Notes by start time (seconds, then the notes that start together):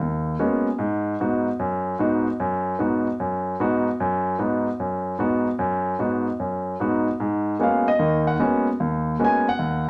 0.00 D#2
0.39 G#3 A#3 B3 C#4 F#4
0.79 G#2
1.20 G#2 B3 D#4 F#4
1.59 F#2
1.99 G#2 B3 D#4 F#4
2.40 F#2
2.79 G#2 B3 D#4 F#4
3.20 F#2
3.60 G#2 B3 D#4 F#4
4.00 F#2
4.39 G#2 B3 D#4 F#4
4.80 F#2
5.19 G#2 B3 D#4 F#4
5.59 F#2
5.99 G#2 B3 D#4 F#4
6.40 F#2
6.80 G#2 B3 D#4 F#4
7.20 G#2
7.59 G#3 A#3 B3 C#4 F#4 F5
7.88 D#5
7.99 D#2 D#3
8.27 F#5
8.39 G#3 A#3 B3 C#4 F#4
8.80 D#2
9.19 G#3 A#3 B3 C#4 F#4
9.24 G#5
9.49 F#5
9.59 D#2